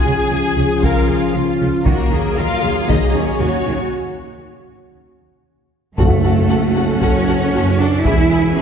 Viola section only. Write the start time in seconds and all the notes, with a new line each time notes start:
0.07 G#4
0.84 A#4
1.08 G#4
1.33 F4
1.86 F#4
2.12 G#4
2.38 A#4
2.63 G#4
3.41 F#4
5.99 F#4
6.25 F#4
6.50 F#4
6.77 F#4
7.02 F#4
7.29 F#4
7.54 F#4
7.79 F#4
8.05 E4 G#4
8.32 E4 G#4
8.56 E4 G#4